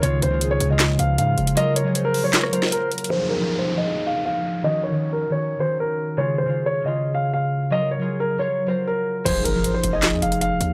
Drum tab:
CC |------------------------------------------------|------------------------------------------------|------------------------------------------------|------------------------------------------------|
HH |x-----x-----x-----x-----x-----x-----x-----x--x--|x-----x-----x-----o-----x-----x-----x-----x-x-x-|------------------------------------------------|------------------------------------------------|
CP |------------------------x-----------------------|------------------------x-----------------------|------------------------------------------------|------------------------------------------------|
SD |------------------------o-----------------------|------------------------o--r-----o--------------|------------------------------------------------|------------------------------------------------|

CC |------------------------------------------------|------------------------------------------------|x-----------------------------------------------|
HH |------------------------------------------------|------------------------------------------------|x-----x-----x-----x-----x-----x--x--x-----x-----|
CP |------------------------------------------------|------------------------------------------------|------------------------x-----------------------|
SD |------------------------------------------------|------------------------------------------------|------------------------o-----------------------|